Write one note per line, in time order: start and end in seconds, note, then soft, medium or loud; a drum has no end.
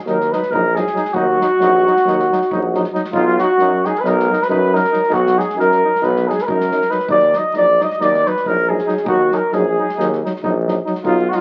0.06 0.31 D#2 medium
0.06 0.18 F#3 medium
0.06 0.17 D#4 medium
0.06 0.34 A#4 medium
0.06 0.33 A#4 medium
0.06 snare soft
0.20 snare soft
0.32 0.41 F#3 medium
0.32 0.40 D#4 medium
0.32 0.56 B4 medium
0.32 0.52 B4 medium
0.32 snare soft
0.42 snare soft
0.51 0.85 A#1 medium
0.51 0.63 F#3 medium
0.51 0.62 D#4 medium
0.51 0.78 A#4 medium
0.51 kick medium
0.55 0.77 A#4 medium
0.75 0.83 F#3 medium
0.75 0.83 D#4 medium
0.75 1.15 G#4 medium
0.75 snare soft
0.87 snare soft
0.94 1.02 F#3 medium
0.94 1.03 D#4 medium
0.94 snare soft
1.05 snare soft
1.13 1.40 D#2 medium
1.13 1.24 F#3 medium
1.13 1.25 D#4 medium
1.13 2.94 F#4 loud
1.13 2.94 F#4 medium
1.13 kick medium
1.38 1.46 F#3 medium
1.38 1.49 D#4 medium
1.38 snare soft
1.59 1.86 A#1 medium
1.59 1.69 F#3 medium
1.59 1.71 D#4 medium
1.59 snare soft
1.85 1.94 F#3 medium
1.85 1.95 D#4 medium
1.85 snare soft
1.96 snare soft
2.05 2.30 D#2 medium
2.05 2.15 F#3 medium
2.05 2.17 D#4 medium
2.05 snare soft
2.19 snare soft
2.32 2.40 F#3 medium
2.32 2.40 D#4 medium
2.32 snare soft
2.41 snare soft
2.51 2.85 A#1 medium
2.51 2.61 F#3 medium
2.51 2.61 D#4 medium
2.51 kick medium
2.74 2.82 F#3 medium
2.74 2.83 D#4 medium
2.74 snare soft
2.84 snare soft
2.93 3.01 F#3 medium
2.93 3.01 D#4 medium
2.93 snare soft
3.04 snare soft
3.12 3.38 B1 loud
3.12 3.23 F#3 medium
3.12 3.23 D#4 medium
3.12 3.37 F4 medium
3.12 kick medium
3.38 3.46 F#3 medium
3.38 3.49 D#4 medium
3.38 3.87 F#4 loud
3.38 3.88 F#4 medium
3.38 snare soft
3.58 3.84 F#2 medium
3.58 3.69 F#3 medium
3.58 3.70 D#4 medium
3.58 snare soft
3.84 3.92 F#3 soft
3.84 3.93 D#4 medium
3.84 4.02 G#4 medium
3.84 4.00 G#4 medium
3.84 snare soft
3.95 4.06 B4 medium
3.95 snare soft
4.00 4.30 B1 loud
4.00 4.14 F#3 medium
4.00 4.10 B4 medium
4.04 4.15 D#4 medium
4.04 4.44 A#4 medium
4.04 4.45 A#4 medium
4.04 snare soft
4.19 snare soft
4.28 4.37 F#3 medium
4.28 4.39 D#4 medium
4.33 snare soft
4.42 4.50 B4 medium
4.42 4.49 B4 medium
4.42 snare soft
4.49 4.83 F#2 medium
4.49 4.59 F#3 medium
4.49 4.59 D#4 medium
4.49 4.76 B4 medium
4.49 4.78 B4 medium
4.49 kick medium
4.73 4.81 F#3 medium
4.73 4.80 D#4 medium
4.73 5.15 A#4 medium
4.73 snare soft
4.84 snare soft
4.91 5.01 F#3 medium
4.91 4.99 D#4 medium
4.91 snare soft
5.03 snare soft
5.09 5.36 B1 medium
5.09 5.21 F#3 medium
5.09 5.20 D#4 medium
5.09 kick medium
5.13 5.40 F#4 medium
5.13 5.41 F#4 medium
5.26 snare soft
5.36 5.45 F#3 medium
5.36 5.44 D#4 medium
5.36 5.58 G#4 medium
5.36 snare soft
5.49 snare soft
5.55 5.81 F#2 medium
5.55 5.69 F#3 medium
5.55 5.67 D#4 medium
5.55 6.06 A#4 medium
5.60 6.05 A#4 medium
5.60 snare soft
5.72 snare soft
5.82 5.92 F#3 medium
5.82 5.91 D#4 medium
5.95 snare soft
6.01 6.28 B1 medium
6.01 6.14 F#3 medium
6.01 6.12 D#4 medium
6.01 6.29 B4 medium
6.01 6.32 B4 medium
6.01 kick medium
6.01 snare soft
6.16 snare soft
6.27 6.37 F#3 soft
6.27 6.36 D#4 medium
6.27 6.43 G#4 medium
6.27 6.44 G#4 medium
6.27 snare soft
6.38 6.48 B4 medium
6.38 snare soft
6.43 6.92 A#4 loud
6.43 6.50 B4 medium
6.48 6.82 F#2 medium
6.48 6.58 F#3 medium
6.48 6.58 D#4 medium
6.48 6.93 A#4 medium
6.48 kick medium
6.60 snare soft
6.71 6.79 F#3 medium
6.71 6.79 D#4 soft
6.71 snare soft
6.81 snare soft
6.89 6.99 F#3 soft
6.89 6.97 D#4 medium
6.89 7.10 B4 medium
6.89 snare soft
7.00 snare soft
7.08 7.35 D#2 medium
7.08 7.21 F#3 medium
7.08 7.18 D#4 medium
7.08 7.39 D5 loud
7.08 7.40 D5 medium
7.08 kick medium
7.33 7.43 F#3 medium
7.33 7.42 D#4 medium
7.33 snare soft
7.37 7.56 D#5 medium
7.37 7.57 D#5 medium
7.52 7.80 A#1 medium
7.52 7.66 F#3 medium
7.52 7.63 D#4 soft
7.52 snare soft
7.57 7.81 D5 medium
7.57 7.81 D5 loud
7.79 7.90 F#3 soft
7.79 7.87 D#4 medium
7.79 snare soft
7.83 8.03 D#5 medium
7.83 8.04 D#5 medium
7.90 snare soft
7.99 8.25 D#2 medium
7.99 8.10 F#3 medium
7.99 8.10 D#4 medium
7.99 8.28 D5 medium
7.99 8.29 D5 loud
7.99 snare soft
8.14 snare soft
8.24 8.34 F#3 medium
8.24 8.33 D#4 medium
8.24 8.48 B4 medium
8.24 8.50 B4 medium
8.24 snare soft
8.37 snare soft
8.45 8.79 A#1 medium
8.45 8.56 F#3 medium
8.45 8.55 D#4 medium
8.45 8.71 A#4 medium
8.45 8.72 A#4 medium
8.45 kick medium
8.69 8.77 F#3 medium
8.69 8.77 D#4 soft
8.69 9.07 G#4 medium
8.79 snare soft
8.86 8.96 F#3 medium
8.86 8.94 D#4 medium
8.86 snare soft
8.97 snare soft
9.05 9.31 D#2 medium
9.05 9.17 F#3 medium
9.05 9.16 D#4 medium
9.05 9.37 F#4 medium
9.05 9.36 F#4 loud
9.05 kick loud
9.32 9.41 F#3 medium
9.32 9.40 D#4 medium
9.32 9.56 A#4 medium
9.32 9.55 A#4 medium
9.32 snare soft
9.52 9.78 A#1 medium
9.52 9.63 F#3 medium
9.52 9.63 D#4 medium
9.52 10.25 G#4 medium
9.52 10.25 G#4 loud
9.52 snare soft
9.78 9.86 F#3 medium
9.78 9.86 D#4 medium
9.89 snare soft
9.97 10.23 D#2 medium
9.97 10.09 F#3 medium
9.97 10.07 D#4 medium
9.97 snare soft
10.13 snare soft
10.24 10.32 F#3 medium
10.24 10.32 D#4 medium
10.24 snare soft
10.36 snare soft
10.43 10.77 A#1 medium
10.43 10.53 F#3 medium
10.43 10.53 D#4 medium
10.43 kick medium
10.66 10.75 F#3 medium
10.66 10.74 D#4 medium
10.66 snare soft
10.85 10.94 F#3 medium
10.85 10.93 D#4 medium
10.85 snare soft
10.95 snare soft
11.04 11.29 B1 medium
11.04 11.16 F#3 medium
11.04 11.15 D#4 medium
11.04 11.32 F4 medium
11.04 11.31 F4 medium
11.04 kick medium
11.29 11.39 D#4 medium
11.29 11.38 F#4 medium
11.29 11.37 F#4 medium
11.29 snare soft
11.34 11.41 F#3 medium
11.34 11.41 F4 medium